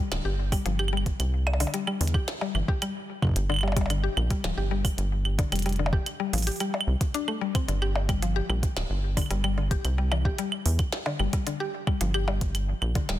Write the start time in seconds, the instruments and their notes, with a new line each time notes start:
0.12 analog synth bass D1, synth arpeggio sound D3, snare, closed hi-hat, claves
0.25 analog synth bass G1, synth arpeggio sound G4
0.52 synth arpeggio sound G3, kick, open hi-hat, claves
0.66 analog synth bass G1, synth arpeggio sound F3, closed hi-hat
0.79 synth arpeggio sound G4, claves
0.88 claves
0.93 synth arpeggio sound G3
0.97 claves
1.06 kick, closed hi-hat
1.20 analog synth bass C2, closed hi-hat, claves
1.47 percussion blips, claves
1.53 percussion blips
1.60 synth arpeggio sound D3, open hi-hat, percussion blips
1.67 percussion blips
1.74 synth arpeggio sound G3, closed hi-hat
1.87 synth arpeggio sound G3, claves
2.01 analog synth bass E2, synth arpeggio sound D3, open hi-hat
2.08 closed hi-hat
2.14 synth arpeggio sound G4, kick, claves
2.28 snare, closed hi-hat
2.41 synth arpeggio sound G3, percussion blips
2.55 analog synth bass G1, synth arpeggio sound E3, claves
2.68 synth arpeggio sound G4, kick
2.82 synth arpeggio sound G3, closed hi-hat, claves
3.22 kick, claves
3.25 kick
3.27 kick
3.29 kick
3.31 kick
3.34 analog synth bass G1, kick, closed hi-hat
3.50 synth arpeggio sound D3, claves
3.52 claves
3.54 claves
3.56 claves
3.59 claves
3.61 synth arpeggio sound G3, percussion blips, claves
3.68 percussion blips
3.72 percussion blips
3.76 synth arpeggio sound G3, kick, closed hi-hat, percussion blips
3.81 percussion blips
3.86 percussion blips
3.90 synth arpeggio sound D3, closed hi-hat, claves
4.04 synth arpeggio sound G4
4.17 analog synth bass A#1, claves
4.31 synth arpeggio sound G3, kick, closed hi-hat
4.44 analog synth bass D1, synth arpeggio sound F3, snare, closed hi-hat
4.57 analog synth bass G1, synth arpeggio sound G4
4.71 synth arpeggio sound G3
4.85 kick, open hi-hat, claves
4.98 analog synth bass G1, closed hi-hat
5.25 claves
5.39 synth arpeggio sound D3, kick, closed hi-hat
5.52 analog synth bass F1, synth arpeggio sound G3, closed hi-hat, claves
5.56 closed hi-hat
5.59 closed hi-hat
5.62 closed hi-hat
5.66 synth arpeggio sound G3, closed hi-hat
5.69 closed hi-hat
5.73 closed hi-hat
5.79 synth arpeggio sound D3
5.86 percussion blips
5.93 synth arpeggio sound G4, kick
6.06 closed hi-hat, claves
6.20 synth arpeggio sound G3
6.33 analog synth bass A1, synth arpeggio sound F3, open hi-hat
6.38 open hi-hat
6.42 open hi-hat
6.47 synth arpeggio sound G4, closed hi-hat, open hi-hat
6.51 open hi-hat
6.56 open hi-hat
6.60 synth arpeggio sound G3, closed hi-hat, claves
6.74 percussion blips
6.81 claves
6.87 analog synth bass C2
7.01 kick, closed hi-hat
7.14 synth arpeggio sound D4, closed hi-hat
7.28 synth arpeggio sound A3, claves
7.41 synth arpeggio sound G3
7.55 synth arpeggio sound C4, kick, closed hi-hat, claves
7.68 analog synth bass G1, synth arpeggio sound D3, closed hi-hat
7.82 synth arpeggio sound G4, claves
7.96 percussion blips
8.09 synth arpeggio sound G3, kick, closed hi-hat, claves
8.22 synth arpeggio sound F3, closed hi-hat
8.36 synth arpeggio sound G4
8.49 analog synth bass A#1, synth arpeggio sound G3, claves
8.63 kick, closed hi-hat
8.76 analog synth bass D1, snare, closed hi-hat, claves
8.90 analog synth bass G1
9.17 synth arpeggio sound D3, kick, open hi-hat, claves
9.22 claves
9.26 claves
9.30 analog synth bass G1, synth arpeggio sound G3, closed hi-hat
9.44 synth arpeggio sound G3, claves
9.58 synth arpeggio sound D3
9.71 synth arpeggio sound G4, kick, closed hi-hat
9.84 analog synth bass C2, closed hi-hat, claves
9.98 synth arpeggio sound G3
10.12 synth arpeggio sound E3, percussion blips, claves
10.25 synth arpeggio sound G4, kick
10.39 synth arpeggio sound G3, closed hi-hat
10.52 claves
10.66 analog synth bass E2, open hi-hat
10.79 kick, closed hi-hat, claves
10.92 snare
11.06 synth arpeggio sound D3, percussion blips
11.19 analog synth bass G1, synth arpeggio sound G3, claves
11.33 synth arpeggio sound G3, kick, closed hi-hat
11.47 synth arpeggio sound D3, closed hi-hat
11.60 synth arpeggio sound G4
11.87 synth arpeggio sound G3, kick, claves
12.01 analog synth bass G1, synth arpeggio sound F3, closed hi-hat
12.14 synth arpeggio sound G4, claves
12.28 synth arpeggio sound G3, percussion blips
12.41 kick, closed hi-hat
12.55 closed hi-hat, claves
12.82 analog synth bass A#1, claves
12.95 synth arpeggio sound D3, kick, closed hi-hat
13.09 analog synth bass D1, synth arpeggio sound G3, snare, closed hi-hat